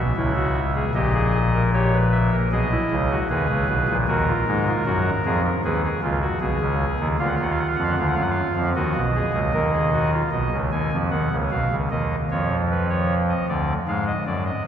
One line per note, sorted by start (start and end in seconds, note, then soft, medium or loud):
0.00 0.13 B1 medium
0.00 0.13 B2 medium
0.00 0.73 E5 medium
0.16 0.84 C#2 medium
0.16 0.84 C#3 medium
0.16 0.33 E4 medium
0.35 0.60 F#4 medium
0.76 0.92 G#4 medium
0.95 2.30 A#1 medium
0.95 2.30 A#2 medium
0.95 1.12 G4 medium
0.95 1.62 D#5 medium
1.14 1.39 G#4 medium
1.54 1.70 A#4 medium
1.73 1.90 G4 medium
1.73 1.98 C#5 medium
1.93 2.17 B4 medium
2.12 2.37 E5 medium
2.32 2.49 A#4 medium
2.52 2.76 B1 medium
2.52 2.76 B2 medium
2.52 2.69 G#4 medium
2.52 3.19 D#5 medium
2.71 2.95 E4 medium
2.91 3.15 C#2 medium
2.91 3.15 C#3 medium
3.11 3.27 F#4 medium
3.30 3.47 D#2 medium
3.30 3.47 D#3 medium
3.30 3.97 G#4 medium
3.30 3.97 B4 medium
3.49 3.66 C#2 medium
3.49 3.66 C#3 medium
3.69 3.86 B1 medium
3.69 3.86 B2 medium
3.89 4.05 A#1 medium
3.89 4.05 A#2 medium
4.08 4.32 D#2 medium
4.08 4.32 D#3 medium
4.08 4.25 F#4 medium
4.08 5.42 A#4 medium
4.28 4.44 F4 medium
4.47 4.71 G#2 medium
4.47 4.71 G#3 medium
4.47 4.64 D#4 medium
4.67 4.83 F4 medium
4.86 5.10 F#2 medium
4.86 5.10 F#3 medium
4.86 5.10 F#4 medium
5.25 5.49 F2 medium
5.25 5.49 F3 medium
5.25 5.42 G#4 medium
5.45 5.61 A#4 medium
5.64 5.88 D#2 medium
5.64 5.88 D#3 medium
5.64 5.82 G#4 medium
5.64 5.81 B4 medium
5.84 6.00 G#4 medium
6.02 6.27 C#2 medium
6.02 6.27 C#3 medium
6.02 6.19 F4 medium
6.22 6.38 F#4 medium
6.41 6.58 B1 medium
6.41 6.58 B2 medium
6.41 7.08 G#4 medium
6.61 6.85 C#2 medium
6.61 6.85 C#3 medium
7.00 7.16 D#2 medium
7.00 7.16 D#3 medium
7.19 7.36 D2 medium
7.19 7.36 D3 medium
7.19 8.54 F4 medium
7.19 7.27 F5 soft
7.27 7.35 F#5 soft
7.35 7.63 D#2 medium
7.35 7.63 D#3 medium
7.35 7.43 F5 medium
7.43 7.51 F#5 medium
7.51 7.59 F5 medium
7.59 7.67 F#5 medium
7.67 7.75 F5 medium
7.76 7.95 F2 medium
7.76 7.95 F3 medium
7.76 7.83 F#5 medium
7.83 7.91 F5 medium
7.91 7.99 F#5 medium
7.98 8.14 D2 medium
7.98 8.14 D3 medium
7.98 8.07 F5 medium
8.07 8.15 F#5 soft
8.15 8.41 F#2 medium
8.15 8.41 F#3 medium
8.15 8.23 F5 medium
8.22 8.30 F#5 medium
8.30 8.69 F5 medium
8.56 8.73 F2 medium
8.56 8.73 F3 medium
8.76 8.93 D#2 medium
8.76 8.93 D#3 medium
8.76 9.00 F#4 medium
8.76 10.11 D#5 medium
8.95 9.20 B1 medium
8.95 9.20 B2 medium
9.15 9.39 G#4 medium
9.34 9.51 C#2 medium
9.34 9.51 C#3 medium
9.54 10.22 D#2 medium
9.54 10.22 D#3 medium
9.54 9.71 A#4 soft
9.73 9.91 G#4 medium
9.93 10.10 F#4 medium
10.12 10.30 F4 medium
10.32 10.50 B1 soft
10.32 10.50 B2 soft
10.32 10.57 D#5 medium
10.52 10.70 C#2 medium
10.52 10.70 C#3 soft
10.72 10.89 D#2 medium
10.72 10.90 D#3 soft
10.72 10.97 G#5 medium
10.92 11.09 F2 soft
10.92 11.09 F3 medium
11.11 11.29 D#2 soft
11.11 11.29 D#3 medium
11.11 11.36 F#5 medium
11.31 11.49 C#2 soft
11.31 11.49 C#3 soft
11.51 11.69 B1 medium
11.51 11.69 B2 soft
11.51 11.76 F5 medium
11.71 11.89 C#2 soft
11.71 11.89 C#3 soft
11.91 12.16 D#2 medium
11.91 12.16 D#3 soft
11.91 12.16 D#5 medium
12.31 13.33 F2 soft
12.31 13.33 F3 medium
12.31 12.55 C#5 medium
12.70 12.87 B4 soft
12.90 13.14 C#5 medium
13.29 13.46 D#5 medium
13.49 13.73 D2 medium
13.49 13.73 D3 medium
13.49 13.73 D5 soft
13.88 14.12 G#2 medium
13.88 14.12 G#3 medium
13.88 14.05 F5 medium
14.07 14.24 D#5 soft
14.26 14.51 F#2 medium
14.26 14.51 F#3 medium
14.26 14.44 D5 medium
14.46 14.63 D#5 soft